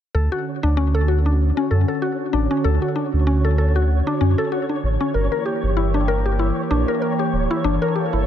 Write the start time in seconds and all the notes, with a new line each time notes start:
0.15 D2 D3 C#4 F#4 A4 C#5
0.32 F#4
0.63 D2 D4
0.77 C#4
0.95 A4
1.08 F#4
1.26 D4
1.57 C#4
1.71 F#2 A4
1.88 A4
2.02 F#4
2.33 A1 D4
2.51 C#4
2.64 D2 A4
2.82 F#4
2.96 D4
3.13 D2
3.27 C#4
3.45 A4
3.58 A4
3.76 F#4
4.07 D4
4.21 F#2 C#4
4.38 A4
4.52 F#4
4.69 D4
4.83 A1
5.01 C#4
5.14 G1 E3 A#3 G4 A#4
5.32 A#4
5.46 G4
5.63 G1
5.77 E4
5.94 D4
6.08 A#4
6.26 G4
6.39 E4
6.71 A#1 D4
6.88 A#4
7.02 A#4
7.19 G4
7.33 D1
7.51 E4
7.64 G1 D4 A4
7.82 A#4
7.96 G4
8.13 G1 E4